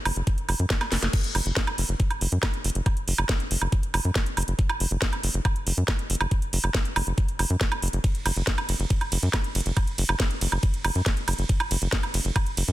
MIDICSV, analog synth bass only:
0, 0, Header, 1, 2, 480
1, 0, Start_track
1, 0, Tempo, 431655
1, 1261, Time_signature, 4, 2, 24, 8
1, 14146, End_track
2, 0, Start_track
2, 0, Title_t, "Analog synth bass"
2, 0, Program_c, 0, 38
2, 61, Note_on_c, 0, 30, 100
2, 131, Note_off_c, 0, 30, 0
2, 181, Note_on_c, 0, 30, 83
2, 251, Note_off_c, 0, 30, 0
2, 540, Note_on_c, 0, 30, 95
2, 610, Note_off_c, 0, 30, 0
2, 661, Note_on_c, 0, 42, 84
2, 731, Note_off_c, 0, 42, 0
2, 1021, Note_on_c, 0, 30, 92
2, 1091, Note_off_c, 0, 30, 0
2, 1141, Note_on_c, 0, 30, 89
2, 1211, Note_off_c, 0, 30, 0
2, 1500, Note_on_c, 0, 30, 100
2, 1570, Note_off_c, 0, 30, 0
2, 1621, Note_on_c, 0, 30, 80
2, 1691, Note_off_c, 0, 30, 0
2, 1981, Note_on_c, 0, 30, 99
2, 2051, Note_off_c, 0, 30, 0
2, 2101, Note_on_c, 0, 30, 84
2, 2171, Note_off_c, 0, 30, 0
2, 2460, Note_on_c, 0, 30, 97
2, 2530, Note_off_c, 0, 30, 0
2, 2581, Note_on_c, 0, 42, 78
2, 2650, Note_off_c, 0, 42, 0
2, 2941, Note_on_c, 0, 30, 96
2, 3011, Note_off_c, 0, 30, 0
2, 3061, Note_on_c, 0, 30, 89
2, 3131, Note_off_c, 0, 30, 0
2, 3421, Note_on_c, 0, 30, 97
2, 3491, Note_off_c, 0, 30, 0
2, 3541, Note_on_c, 0, 30, 83
2, 3611, Note_off_c, 0, 30, 0
2, 3901, Note_on_c, 0, 30, 97
2, 3971, Note_off_c, 0, 30, 0
2, 4021, Note_on_c, 0, 30, 88
2, 4091, Note_off_c, 0, 30, 0
2, 4381, Note_on_c, 0, 30, 95
2, 4451, Note_off_c, 0, 30, 0
2, 4501, Note_on_c, 0, 42, 83
2, 4571, Note_off_c, 0, 42, 0
2, 4861, Note_on_c, 0, 30, 100
2, 4931, Note_off_c, 0, 30, 0
2, 4981, Note_on_c, 0, 30, 84
2, 5051, Note_off_c, 0, 30, 0
2, 5341, Note_on_c, 0, 30, 95
2, 5411, Note_off_c, 0, 30, 0
2, 5461, Note_on_c, 0, 30, 85
2, 5531, Note_off_c, 0, 30, 0
2, 5821, Note_on_c, 0, 30, 94
2, 5890, Note_off_c, 0, 30, 0
2, 5941, Note_on_c, 0, 30, 87
2, 6011, Note_off_c, 0, 30, 0
2, 6300, Note_on_c, 0, 30, 93
2, 6370, Note_off_c, 0, 30, 0
2, 6421, Note_on_c, 0, 42, 82
2, 6491, Note_off_c, 0, 42, 0
2, 6781, Note_on_c, 0, 30, 94
2, 6851, Note_off_c, 0, 30, 0
2, 6901, Note_on_c, 0, 30, 89
2, 6970, Note_off_c, 0, 30, 0
2, 7260, Note_on_c, 0, 30, 98
2, 7330, Note_off_c, 0, 30, 0
2, 7381, Note_on_c, 0, 30, 86
2, 7451, Note_off_c, 0, 30, 0
2, 7741, Note_on_c, 0, 30, 100
2, 7811, Note_off_c, 0, 30, 0
2, 7861, Note_on_c, 0, 30, 83
2, 7931, Note_off_c, 0, 30, 0
2, 8221, Note_on_c, 0, 30, 91
2, 8291, Note_off_c, 0, 30, 0
2, 8341, Note_on_c, 0, 42, 79
2, 8411, Note_off_c, 0, 42, 0
2, 8701, Note_on_c, 0, 30, 98
2, 8771, Note_off_c, 0, 30, 0
2, 8821, Note_on_c, 0, 30, 86
2, 8891, Note_off_c, 0, 30, 0
2, 9181, Note_on_c, 0, 30, 97
2, 9251, Note_off_c, 0, 30, 0
2, 9301, Note_on_c, 0, 30, 87
2, 9370, Note_off_c, 0, 30, 0
2, 9661, Note_on_c, 0, 30, 96
2, 9731, Note_off_c, 0, 30, 0
2, 9780, Note_on_c, 0, 30, 84
2, 9850, Note_off_c, 0, 30, 0
2, 10141, Note_on_c, 0, 30, 96
2, 10210, Note_off_c, 0, 30, 0
2, 10260, Note_on_c, 0, 42, 84
2, 10330, Note_off_c, 0, 42, 0
2, 10620, Note_on_c, 0, 30, 98
2, 10690, Note_off_c, 0, 30, 0
2, 10740, Note_on_c, 0, 30, 89
2, 10810, Note_off_c, 0, 30, 0
2, 11100, Note_on_c, 0, 30, 97
2, 11170, Note_off_c, 0, 30, 0
2, 11220, Note_on_c, 0, 30, 87
2, 11290, Note_off_c, 0, 30, 0
2, 11580, Note_on_c, 0, 30, 95
2, 11650, Note_off_c, 0, 30, 0
2, 11700, Note_on_c, 0, 30, 86
2, 11770, Note_off_c, 0, 30, 0
2, 12060, Note_on_c, 0, 30, 94
2, 12130, Note_off_c, 0, 30, 0
2, 12180, Note_on_c, 0, 42, 80
2, 12250, Note_off_c, 0, 42, 0
2, 12540, Note_on_c, 0, 30, 91
2, 12610, Note_off_c, 0, 30, 0
2, 12661, Note_on_c, 0, 30, 86
2, 12731, Note_off_c, 0, 30, 0
2, 13021, Note_on_c, 0, 30, 101
2, 13091, Note_off_c, 0, 30, 0
2, 13141, Note_on_c, 0, 30, 87
2, 13211, Note_off_c, 0, 30, 0
2, 13500, Note_on_c, 0, 30, 99
2, 13571, Note_off_c, 0, 30, 0
2, 13621, Note_on_c, 0, 30, 84
2, 13691, Note_off_c, 0, 30, 0
2, 13981, Note_on_c, 0, 30, 96
2, 14051, Note_off_c, 0, 30, 0
2, 14101, Note_on_c, 0, 42, 84
2, 14146, Note_off_c, 0, 42, 0
2, 14146, End_track
0, 0, End_of_file